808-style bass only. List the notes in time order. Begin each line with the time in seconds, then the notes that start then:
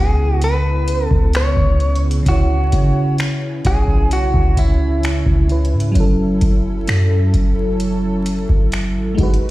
Already playing: C#2
1.11 C#2
1.57 C#2
2.26 C#2
2.73 C#3
3.65 B1
4.34 C#2
5.26 C#2
5.73 G#2
5.96 F#1
6.42 F#1
6.88 F#2
7.34 F#1
8.50 F#1
8.96 G#1
9.19 G#1